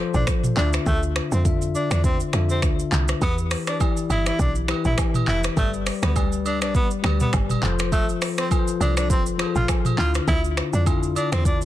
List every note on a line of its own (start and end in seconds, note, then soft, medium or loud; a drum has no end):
0.00 0.59 F3 loud
0.00 0.57 F4 medium
0.00 0.59 A4 medium
0.00 0.59 C5 loud
0.00 0.59 D5 medium
0.14 0.24 A1 medium
0.14 0.26 D4 medium
0.14 mid tom loud
0.14 shaker soft
0.27 finger snap medium
0.27 kick medium
0.27 cross-stick loud
0.27 shaker medium
0.43 mid tom loud
0.43 shaker medium
0.56 0.79 D2 loud
0.56 1.28 D3 medium
0.56 1.29 D4 medium
0.56 0.71 D4 loud
0.56 1.29 F4 medium
0.56 1.29 E5 loud
0.56 clap medium
0.73 finger snap medium
0.73 cross-stick loud
0.73 shaker medium
0.86 1.21 D2 loud
0.86 1.00 A3 loud
0.86 kick loud
0.86 shaker medium
1.03 shaker medium
1.16 finger snap medium
1.16 cross-stick loud
1.32 1.76 F2 loud
1.32 1.44 C4 medium
1.32 shaker medium
1.44 2.06 D3 medium
1.44 2.06 D4 medium
1.44 2.07 F4 medium
1.44 2.07 E5 medium
1.44 kick loud
1.44 shaker medium
1.62 shaker medium
1.75 1.89 D4 medium
1.75 shaker medium
1.91 2.23 E2 loud
1.91 2.02 D4 medium
1.91 finger snap medium
1.91 cross-stick medium
1.91 shaker medium
2.04 2.18 C4 medium
2.04 kick loud
2.04 shaker medium
2.20 shaker medium
2.32 2.64 F2 medium
2.32 2.94 D3 medium
2.32 2.95 D4 medium
2.32 2.95 F4 medium
2.32 2.96 E5 medium
2.32 finger snap medium
2.32 cross-stick medium
2.32 shaker soft
2.49 2.61 C4 medium
2.49 shaker soft
2.62 2.85 D2 loud
2.62 finger snap medium
2.62 kick medium
2.62 cross-stick loud
2.62 shaker medium
2.79 shaker medium
2.92 3.14 C2 medium
2.92 clap medium
2.92 shaker medium
3.08 finger snap medium
3.08 cross-stick medium
3.08 shaker medium
3.20 3.56 E2 loud
3.20 3.63 E3 medium
3.20 3.36 B3 loud
3.20 3.63 E4 medium
3.20 3.64 G4 medium
3.20 3.64 B4 medium
3.20 kick loud
3.20 high agogo medium
3.20 shaker medium
3.38 shaker medium
3.51 finger snap medium
3.51 cross-stick loud
3.51 open hi-hat medium
3.51 shaker medium
3.67 3.79 D4 medium
3.67 finger snap medium
3.67 cross-stick loud
3.67 shaker medium
3.79 4.41 E3 medium
3.79 4.42 E4 medium
3.79 4.42 G4 medium
3.79 4.43 D5 medium
3.79 kick loud
3.79 high agogo medium
3.79 low woodblock medium
3.79 shaker medium
3.97 shaker medium
4.10 4.32 G1 medium
4.10 4.24 E4 medium
4.10 high agogo medium
4.10 shaker medium
4.26 4.38 E4 medium
4.26 finger snap medium
4.26 cross-stick medium
4.26 shaker medium
4.39 4.73 B1 loud
4.39 4.54 D4 medium
4.39 kick loud
4.39 shaker medium
4.55 shaker medium
4.68 5.30 E3 medium
4.68 5.30 E4 medium
4.68 5.30 G4 medium
4.68 5.31 B4 medium
4.68 finger snap medium
4.68 cross-stick medium
4.68 high agogo medium
4.85 4.95 A1 medium
4.85 4.97 E4 medium
4.85 mid tom loud
4.85 shaker soft
4.98 finger snap medium
4.98 kick medium
4.98 cross-stick loud
4.98 low woodblock medium
4.98 shaker medium
5.14 mid tom loud
5.14 high agogo medium
5.14 shaker medium
5.28 5.50 F1 medium
5.28 5.42 E4 medium
5.28 clap medium
5.43 finger snap medium
5.43 cross-stick loud
5.43 shaker medium
5.56 5.91 G1 loud
5.56 5.98 G3 medium
5.56 5.71 A3 loud
5.56 5.99 G4 medium
5.56 5.99 B4 medium
5.56 6.00 D5 medium
5.56 kick loud
5.56 high agogo medium
5.56 shaker medium
5.74 shaker medium
5.86 finger snap medium
5.86 cross-stick loud
5.86 open hi-hat medium
5.86 shaker medium
6.03 6.63 D2 medium
6.03 6.14 B3 medium
6.03 finger snap medium
6.03 cross-stick loud
6.03 shaker medium
6.15 6.77 G3 medium
6.15 6.77 G4 medium
6.15 6.77 B4 medium
6.15 6.78 D5 medium
6.15 kick loud
6.15 high agogo medium
6.15 low woodblock medium
6.15 shaker medium
6.32 shaker medium
6.46 6.59 D4 medium
6.46 high agogo medium
6.46 shaker medium
6.61 6.93 B1 medium
6.61 6.73 D4 medium
6.61 finger snap medium
6.61 cross-stick medium
6.61 shaker medium
6.75 6.89 B3 medium
6.75 kick loud
6.75 shaker medium
6.91 shaker medium
7.03 7.26 D2 medium
7.03 7.62 G3 medium
7.03 7.63 G4 medium
7.03 7.63 B4 medium
7.03 7.63 D5 medium
7.03 finger snap medium
7.03 cross-stick medium
7.03 high agogo medium
7.20 7.32 B3 medium
7.20 mid tom loud
7.20 shaker soft
7.33 7.56 G1 loud
7.33 finger snap medium
7.33 kick medium
7.33 cross-stick loud
7.33 low woodblock medium
7.33 shaker medium
7.49 mid tom loud
7.49 high agogo medium
7.49 shaker medium
7.62 8.19 F1 loud
7.62 8.34 F3 loud
7.62 8.34 F4 medium
7.62 8.35 A4 medium
7.62 8.35 C5 loud
7.62 clap medium
7.79 finger snap medium
7.79 cross-stick loud
7.79 shaker medium
7.92 8.06 A3 loud
7.92 kick loud
7.92 high agogo medium
7.92 shaker medium
8.09 shaker medium
8.22 finger snap medium
8.22 cross-stick loud
8.22 open hi-hat medium
8.22 shaker medium
8.38 8.49 C4 medium
8.38 finger snap medium
8.38 cross-stick loud
8.38 shaker medium
8.50 9.12 F3 medium
8.50 9.12 F4 medium
8.50 9.13 A4 medium
8.50 8.59 B4 medium
8.50 kick loud
8.50 high agogo medium
8.50 low woodblock medium
8.50 shaker medium
8.59 9.16 C5 medium
8.68 shaker medium
8.81 9.12 C2 loud
8.81 8.95 D4 medium
8.81 high agogo medium
8.81 shaker medium
8.97 9.08 D4 medium
8.97 finger snap medium
8.97 cross-stick medium
8.97 shaker medium
9.10 9.44 F1 loud
9.10 9.24 C4 medium
9.10 kick loud
9.10 shaker medium
9.26 shaker medium
9.38 9.98 F3 medium
9.38 9.98 F4 medium
9.38 9.47 G#4 medium
9.38 9.99 C5 medium
9.38 finger snap medium
9.38 cross-stick medium
9.38 high agogo medium
9.46 10.02 A4 medium
9.55 9.65 A1 medium
9.55 9.67 F4 medium
9.55 mid tom medium
9.55 shaker soft
9.68 finger snap medium
9.68 kick loud
9.68 cross-stick loud
9.68 low woodblock medium
9.68 shaker medium
9.85 mid tom loud
9.85 high agogo medium
9.85 shaker medium
9.97 10.20 D2 loud
9.97 10.69 D3 medium
9.97 10.70 D4 medium
9.97 10.70 E4 medium
9.97 10.12 F4 loud
9.97 10.71 F4 medium
9.97 clap medium
10.14 finger snap medium
10.14 cross-stick loud
10.14 shaker medium
10.28 10.62 D2 loud
10.28 10.42 E4 loud
10.28 kick loud
10.28 high agogo medium
10.28 shaker medium
10.44 shaker medium
10.57 finger snap medium
10.57 cross-stick loud
10.73 11.17 F2 medium
10.73 10.85 D4 medium
10.73 shaker medium
10.85 11.47 D3 medium
10.85 11.48 D4 medium
10.85 11.48 E4 medium
10.85 11.49 F4 medium
10.85 kick loud
10.85 high agogo medium
10.85 low woodblock medium
10.85 shaker medium
11.03 shaker medium
11.16 11.30 D4 medium
11.16 high agogo medium
11.16 shaker medium
11.32 11.64 E2 medium
11.32 11.44 C4 medium
11.32 finger snap medium
11.32 cross-stick medium
11.32 shaker medium
11.45 11.59 D4 medium
11.45 kick loud
11.45 shaker medium
11.61 shaker medium